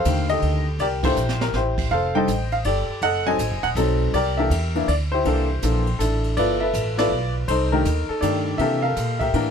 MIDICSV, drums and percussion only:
0, 0, Header, 1, 2, 480
1, 0, Start_track
1, 0, Tempo, 371517
1, 1028, Time_signature, 3, 2, 24, 8
1, 12282, End_track
2, 0, Start_track
2, 0, Title_t, "Drums"
2, 64, Note_on_c, 9, 44, 51
2, 64, Note_on_c, 9, 51, 77
2, 193, Note_off_c, 9, 44, 0
2, 193, Note_off_c, 9, 51, 0
2, 374, Note_on_c, 9, 51, 49
2, 503, Note_off_c, 9, 51, 0
2, 544, Note_on_c, 9, 51, 62
2, 673, Note_off_c, 9, 51, 0
2, 1024, Note_on_c, 9, 51, 64
2, 1153, Note_off_c, 9, 51, 0
2, 1336, Note_on_c, 9, 49, 76
2, 1338, Note_on_c, 9, 36, 81
2, 1465, Note_off_c, 9, 49, 0
2, 1467, Note_off_c, 9, 36, 0
2, 1504, Note_on_c, 9, 44, 61
2, 1633, Note_off_c, 9, 44, 0
2, 1665, Note_on_c, 9, 38, 58
2, 1794, Note_off_c, 9, 38, 0
2, 1825, Note_on_c, 9, 38, 84
2, 1954, Note_off_c, 9, 38, 0
2, 1986, Note_on_c, 9, 38, 55
2, 2115, Note_off_c, 9, 38, 0
2, 2298, Note_on_c, 9, 36, 74
2, 2301, Note_on_c, 9, 49, 74
2, 2427, Note_off_c, 9, 36, 0
2, 2430, Note_off_c, 9, 49, 0
2, 2944, Note_on_c, 9, 44, 53
2, 2944, Note_on_c, 9, 51, 67
2, 3073, Note_off_c, 9, 44, 0
2, 3073, Note_off_c, 9, 51, 0
2, 3251, Note_on_c, 9, 51, 45
2, 3380, Note_off_c, 9, 51, 0
2, 3415, Note_on_c, 9, 51, 67
2, 3545, Note_off_c, 9, 51, 0
2, 3897, Note_on_c, 9, 51, 60
2, 4026, Note_off_c, 9, 51, 0
2, 4377, Note_on_c, 9, 44, 66
2, 4377, Note_on_c, 9, 51, 75
2, 4506, Note_off_c, 9, 44, 0
2, 4506, Note_off_c, 9, 51, 0
2, 4694, Note_on_c, 9, 51, 45
2, 4823, Note_off_c, 9, 51, 0
2, 4860, Note_on_c, 9, 44, 56
2, 4860, Note_on_c, 9, 51, 69
2, 4989, Note_off_c, 9, 44, 0
2, 4989, Note_off_c, 9, 51, 0
2, 5344, Note_on_c, 9, 51, 66
2, 5474, Note_off_c, 9, 51, 0
2, 5825, Note_on_c, 9, 44, 52
2, 5825, Note_on_c, 9, 51, 75
2, 5954, Note_off_c, 9, 44, 0
2, 5954, Note_off_c, 9, 51, 0
2, 6141, Note_on_c, 9, 51, 46
2, 6270, Note_off_c, 9, 51, 0
2, 6306, Note_on_c, 9, 51, 64
2, 6435, Note_off_c, 9, 51, 0
2, 6784, Note_on_c, 9, 51, 63
2, 6913, Note_off_c, 9, 51, 0
2, 7266, Note_on_c, 9, 44, 62
2, 7266, Note_on_c, 9, 51, 75
2, 7395, Note_off_c, 9, 44, 0
2, 7395, Note_off_c, 9, 51, 0
2, 7581, Note_on_c, 9, 51, 48
2, 7710, Note_off_c, 9, 51, 0
2, 7752, Note_on_c, 9, 44, 64
2, 7752, Note_on_c, 9, 51, 69
2, 7882, Note_off_c, 9, 44, 0
2, 7882, Note_off_c, 9, 51, 0
2, 8061, Note_on_c, 9, 51, 46
2, 8191, Note_off_c, 9, 51, 0
2, 8228, Note_on_c, 9, 51, 64
2, 8357, Note_off_c, 9, 51, 0
2, 8709, Note_on_c, 9, 44, 54
2, 8709, Note_on_c, 9, 51, 71
2, 8838, Note_off_c, 9, 44, 0
2, 8838, Note_off_c, 9, 51, 0
2, 9023, Note_on_c, 9, 51, 62
2, 9026, Note_on_c, 9, 38, 79
2, 9152, Note_off_c, 9, 51, 0
2, 9155, Note_off_c, 9, 38, 0
2, 9666, Note_on_c, 9, 51, 69
2, 9795, Note_off_c, 9, 51, 0
2, 10145, Note_on_c, 9, 44, 56
2, 10145, Note_on_c, 9, 51, 69
2, 10274, Note_off_c, 9, 44, 0
2, 10274, Note_off_c, 9, 51, 0
2, 10624, Note_on_c, 9, 44, 62
2, 10624, Note_on_c, 9, 51, 72
2, 10753, Note_off_c, 9, 44, 0
2, 10753, Note_off_c, 9, 51, 0
2, 11102, Note_on_c, 9, 51, 60
2, 11231, Note_off_c, 9, 51, 0
2, 11582, Note_on_c, 9, 44, 59
2, 11582, Note_on_c, 9, 51, 77
2, 11712, Note_off_c, 9, 44, 0
2, 11712, Note_off_c, 9, 51, 0
2, 11894, Note_on_c, 9, 36, 52
2, 11895, Note_on_c, 9, 51, 46
2, 12024, Note_off_c, 9, 36, 0
2, 12024, Note_off_c, 9, 51, 0
2, 12063, Note_on_c, 9, 51, 61
2, 12192, Note_off_c, 9, 51, 0
2, 12282, End_track
0, 0, End_of_file